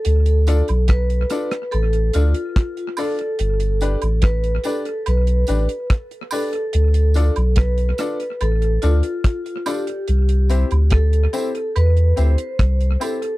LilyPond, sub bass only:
\new Staff \with { instrumentName = "Sub bass" } { \clef bass \time 4/4 \key d \dorian \tempo 4 = 72 d,8. b,,8. r8 a,,8 d,16 r4 r16 | g,,8. a,,8. r8 b,,8 a,,16 r4 r16 | d,8. b,,8. r8 a,,8 d,16 r4 r16 | c,8. d,8. r8 e,8 d,16 r16 c,8 r8 | }